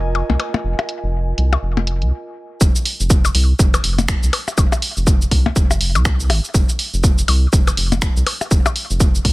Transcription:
0.00 0.23 F1 medium
0.00 2.12 F4 medium
0.00 2.12 A#4 medium
0.00 2.12 D#5 loud
0.00 2.12 G#5 medium
0.15 percussion blips medium
0.30 0.37 C2 medium
0.30 percussion blips medium
0.40 closed hi-hat loud
0.40 percussion blips medium
0.54 percussion blips medium
0.64 0.74 F1 loud
0.79 closed hi-hat soft
0.79 percussion blips medium
0.89 closed hi-hat medium
1.03 1.33 F1 medium
1.38 1.57 C2 loud
1.38 closed hi-hat medium
1.53 percussion blips medium
1.62 2.03 F1 medium
1.77 percussion blips medium
1.87 closed hi-hat medium
2.02 2.12 C2 loud
2.02 closed hi-hat soft
2.61 2.71 F1 loud
2.61 kick loud
2.61 shaker medium
2.76 shaker soft
2.85 open hi-hat medium
3.00 3.30 F1 medium
3.00 shaker soft
3.10 kick loud
3.10 shaker medium
3.25 percussion blips medium
3.25 shaker soft
3.35 3.53 C2 loud
3.35 open hi-hat medium
3.59 3.78 F1 medium
3.59 kick loud
3.59 shaker medium
3.74 percussion blips medium
3.74 shaker soft
3.84 4.16 F1 medium
3.84 open hi-hat medium
3.98 closed hi-hat soft
3.98 percussion blips medium
3.98 shaker soft
4.08 finger snap loud
4.08 kick loud
4.08 shaker medium
4.23 4.30 C2 loud
4.23 shaker soft
4.33 open hi-hat medium
4.33 percussion blips medium
4.48 percussion blips medium
4.48 shaker soft
4.58 4.68 F1 loud
4.58 kick loud
4.58 percussion blips medium
4.58 shaker medium
4.72 percussion blips medium
4.72 shaker soft
4.82 open hi-hat medium
4.97 5.27 F1 medium
4.97 shaker soft
5.07 kick loud
5.07 shaker medium
5.22 shaker soft
5.31 5.50 C2 loud
5.31 kick medium
5.31 open hi-hat medium
5.46 percussion blips loud
5.46 percussion blips medium
5.56 5.97 F1 medium
5.56 kick loud
5.56 shaker medium
5.71 percussion blips medium
5.71 shaker soft
5.81 open hi-hat medium
5.95 6.31 C2 loud
5.95 closed hi-hat soft
5.95 percussion blips medium
5.95 shaker soft
6.05 finger snap loud
6.05 kick loud
6.05 percussion blips medium
6.05 shaker medium
6.20 shaker soft
6.30 6.40 G#1 loud
6.30 open hi-hat medium
6.30 percussion blips medium
6.45 shaker soft
6.54 6.65 F1 loud
6.54 kick loud
6.54 shaker medium
6.69 shaker soft
6.79 open hi-hat medium
6.94 7.23 F1 medium
6.94 shaker soft
7.04 kick loud
7.04 shaker medium
7.18 shaker soft
7.28 7.47 C2 loud
7.28 open hi-hat medium
7.28 percussion blips medium
7.53 7.71 F1 medium
7.53 kick loud
7.53 shaker medium
7.67 percussion blips medium
7.67 shaker soft
7.77 8.09 F1 medium
7.77 open hi-hat medium
7.92 closed hi-hat soft
7.92 percussion blips medium
7.92 shaker soft
8.02 finger snap loud
8.02 kick loud
8.02 shaker medium
8.17 8.23 C2 loud
8.17 shaker soft
8.26 open hi-hat medium
8.26 percussion blips medium
8.41 percussion blips medium
8.41 shaker soft
8.51 8.61 F1 loud
8.51 kick loud
8.51 shaker medium
8.66 percussion blips medium
8.66 shaker soft
8.76 open hi-hat medium
8.90 9.20 F1 medium
8.90 shaker soft
9.00 kick loud
9.00 shaker medium
9.15 shaker soft
9.25 9.33 C2 loud
9.25 kick medium
9.25 open hi-hat medium

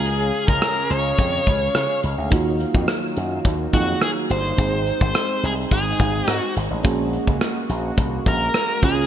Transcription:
0.00 0.30 C#2 medium
0.00 2.29 C#3 medium
0.00 1.99 G#3 medium
0.00 1.99 C#4 medium
0.00 2.29 C#4 medium
0.00 2.00 F4 medium
0.00 0.48 G#4 medium
0.00 2.00 G#4 medium
0.00 2.29 G#4 medium
0.00 4.54 F5 medium
0.05 closed hi-hat medium
0.34 closed hi-hat medium
0.48 0.59 C#2 medium
0.48 0.92 A#4 medium
0.48 kick medium
0.62 cross-stick loud
0.62 closed hi-hat medium
0.90 1.11 C#2 medium
0.90 2.00 C#5 medium
0.90 closed hi-hat medium
1.19 1.40 F2 medium
1.19 kick medium
1.19 closed hi-hat medium
1.47 1.68 C#2 medium
1.47 kick medium
1.47 closed hi-hat medium
1.75 1.86 C#3 medium
1.75 cross-stick loud
1.75 closed hi-hat medium
2.03 2.14 C#2 medium
2.03 closed hi-hat medium
2.18 2.28 D2 medium
2.30 2.64 D#2 medium
2.30 4.56 D#3 medium
2.30 4.56 F#3 medium
2.30 3.70 A#3 medium
2.30 3.70 D#4 medium
2.30 6.81 D#4 medium
2.30 3.71 F4 medium
2.30 3.71 F#4 medium
2.30 kick loud
2.30 closed hi-hat medium
2.60 closed hi-hat medium
2.75 2.85 F2 medium
2.75 kick medium
2.88 cross-stick loud
2.88 closed hi-hat medium
3.17 3.38 F#2 medium
3.17 closed hi-hat medium
3.45 3.66 D#2 medium
3.45 kick medium
3.45 closed hi-hat medium
3.73 3.95 F2 medium
3.73 4.58 A#3 soft
3.73 4.58 D#4 soft
3.73 4.58 F4 soft
3.73 4.00 F#4 medium
3.73 4.59 G#4 soft
3.73 kick medium
3.73 closed hi-hat medium
4.02 4.11 G#4 medium
4.02 cross-stick medium
4.02 closed hi-hat medium
4.30 4.51 G1 medium
4.30 5.01 C5 medium
4.30 closed hi-hat medium
4.57 4.90 G#1 loud
4.57 6.80 G#3 medium
4.57 8.79 G#3 medium
4.57 6.82 C4 medium
4.57 6.81 C4 medium
4.57 6.81 D#4 soft
4.57 6.81 G#4 medium
4.57 kick loud
4.57 closed hi-hat medium
4.87 closed hi-hat medium
5.01 5.12 G#1 medium
5.01 5.45 C5 medium
5.01 kick medium
5.15 cross-stick loud
5.15 closed hi-hat medium
5.43 5.64 C2 medium
5.43 5.52 G#4 medium
5.43 closed hi-hat medium
5.71 5.93 G#1 loud
5.71 6.31 G#4 medium
5.71 kick medium
5.71 closed hi-hat medium
6.00 6.21 G#1 medium
6.00 kick medium
6.00 closed hi-hat medium
6.28 6.39 G#2 loud
6.28 6.53 F#4 medium
6.28 cross-stick loud
6.28 closed hi-hat medium
6.56 6.67 G#1 medium
6.56 closed hi-hat medium
6.70 6.81 A1 medium
6.83 7.17 A#1 loud
6.83 8.78 A#3 medium
6.83 8.81 A#3 medium
6.83 8.79 C#4 medium
6.83 8.81 F#4 medium
6.83 8.79 F#4 medium
6.83 8.79 G#4 medium
6.83 kick loud
6.83 closed hi-hat loud
7.13 closed hi-hat medium
7.27 7.38 C#2 medium
7.27 kick medium
7.41 cross-stick loud
7.41 closed hi-hat medium
7.69 7.91 A#1 medium
7.69 closed hi-hat medium
7.98 8.19 C2 medium
7.98 kick medium
7.98 closed hi-hat medium
8.26 8.47 A#1 medium
8.26 8.84 A#4 medium
8.26 kick medium
8.26 closed hi-hat medium
8.54 cross-stick loud
8.54 closed hi-hat medium
8.82 9.07 C#2 medium
8.82 9.07 C#3 medium
8.82 9.07 G#3 medium
8.82 9.07 C#4 medium
8.82 9.07 F4 medium
8.82 9.07 G#4 medium
8.82 kick loud
8.82 closed hi-hat medium

